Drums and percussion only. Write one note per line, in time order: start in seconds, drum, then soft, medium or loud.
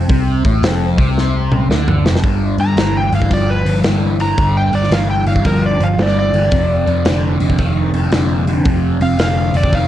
0.09 kick loud
0.09 open hi-hat medium
0.45 kick loud
0.45 open hi-hat medium
0.63 snare loud
0.63 open hi-hat medium
0.98 kick loud
0.98 open hi-hat medium
1.18 snare medium
1.52 mid tom medium
1.71 snare medium
1.88 mid tom medium
2.06 snare loud
2.15 snare medium
2.24 kick loud
2.24 open hi-hat medium
2.58 open hi-hat medium
2.77 snare loud
2.77 open hi-hat medium
3.12 open hi-hat medium
3.22 kick medium
3.31 kick medium
3.31 open hi-hat medium
3.66 open hi-hat medium
3.84 snare loud
3.84 open hi-hat medium
4.20 open hi-hat medium
4.38 kick loud
4.38 open hi-hat medium
4.73 open hi-hat medium
4.83 snare soft
4.92 snare loud
4.92 open hi-hat medium
5.26 open hi-hat medium
5.36 kick medium
5.44 kick loud
5.44 open hi-hat medium
5.80 open hi-hat medium
5.98 snare medium
5.98 open hi-hat medium
6.34 open hi-hat medium
6.51 kick loud
6.51 open hi-hat medium
6.87 open hi-hat soft
7.05 snare loud
7.05 open hi-hat medium
7.40 open hi-hat medium
7.50 kick medium
7.58 kick medium
7.58 open hi-hat medium
7.94 open hi-hat medium
8.12 snare loud
8.12 open hi-hat medium
8.48 open hi-hat medium
8.65 kick loud
8.65 open hi-hat medium
9.01 open hi-hat medium
9.19 snare loud
9.19 open hi-hat medium
9.54 open hi-hat medium
9.63 kick medium
9.73 kick medium
9.73 open hi-hat medium